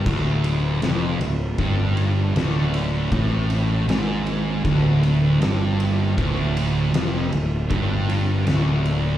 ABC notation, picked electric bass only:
X:1
M:4/4
L:1/8
Q:1/4=78
K:Dm
V:1 name="Picked electric bass" clef=bass
D,,,2 F,,, D,,, G,,,2 D,,,2 | A,,,2 ^G,,,2 D,,,2 =G,,,2 | D,,,2 F,,, D,,, G,,,2 D,,,2 |]